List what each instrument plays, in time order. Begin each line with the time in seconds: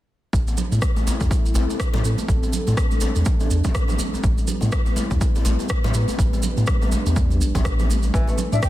0.33 sub bass A1, analog synth pad G3 C4 E4 A4, kick, maracas
0.47 djembe tone, maracas
0.57 low conga, maracas
0.72 sub bass A2, high conga, djembe tone, maracas
0.82 kick, cross-stick, maracas
0.96 djembe tone, high conga, maracas
1.07 djembe slap, high conga, djembe bass, maracas
1.20 sub bass E2, kick, djembe tone, maracas
1.31 kick, maracas
1.45 djembe tone, maracas
1.54 sub bass A1, djembe slap, high conga, djembe bass, maracas
1.70 djembe tone, maracas
1.80 kick, cross-stick, maracas
1.94 sub bass A2, djembe slap, djembe tone, high conga, low conga, maracas
2.04 sub bass A2, maracas
2.18 high conga, djembe tone, maracas
2.28 sub bass A1, analog synth pad D4, kick, maracas
2.43 djembe tone, maracas
2.53 low conga, maracas
2.67 sub bass A2, high conga, djembe tone, maracas
2.77 kick, cross-stick, maracas
2.91 djembe tone, high conga, maracas
3.01 djembe slap, high conga, djembe bass, maracas
3.16 sub bass E2, djembe tone, maracas
3.25 kick, high conga, low conga, maracas
3.40 djembe tone, maracas
3.51 sub bass E2, maracas
3.64 kick, djembe slap, djembe tone, low conga, maracas
3.75 kick, cross-stick, maracas
3.88 djembe tone, low conga, maracas
3.99 high conga, djembe bass, maracas
4.14 djembe tone, maracas
4.23 sub bass A1, analog synth pad B3 E4 B4, kick, maracas
4.38 djembe tone, maracas
4.47 low conga, maracas
4.61 sub bass A2, djembe tone, high conga, maracas
4.72 kick, cross-stick, maracas
4.86 djembe tone, high conga, maracas
4.96 djembe slap, high conga, djembe bass, maracas
5.10 sub bass E2, kick, djembe tone, maracas
5.21 kick, maracas
5.35 djembe tone, maracas
5.45 sub bass A1, djembe slap, high conga, djembe bass, maracas
5.59 djembe tone, maracas
5.69 kick, cross-stick, maracas
5.84 sub bass A2, djembe slap, djembe tone, high conga, low conga, maracas
5.94 sub bass A2, maracas
6.08 high conga, djembe tone, maracas
6.19 sub bass A1, analog synth pad D4, kick, maracas
6.33 djembe tone, maracas
6.43 low conga, maracas
6.57 sub bass A2, djembe tone, high conga, maracas
6.67 kick, cross-stick, maracas
6.82 djembe tone, high conga, maracas
6.92 djembe slap, high conga, djembe bass, maracas
7.06 sub bass E2, djembe tone, maracas
7.16 kick, high conga, low conga, maracas
7.30 djembe tone, maracas
7.41 sub bass A1, maracas
7.55 sub bass A1, kick, djembe slap, djembe tone, low conga, maracas
7.65 kick, cross-stick, maracas
7.79 djembe tone, low conga, maracas
7.89 high conga, djembe bass, maracas
8.03 djembe tone, maracas
8.14 sub bass A1, nylon-string guitar E3, analog synth pad C4 E4 A4, kick, maracas
8.28 nylon-string guitar A3, djembe tone, maracas
8.38 low conga, maracas
8.52 sub bass A2, nylon-string guitar D4, flute E5, high conga, djembe tone, maracas
8.62 nylon-string guitar A3, flute G5, kick, cross-stick, maracas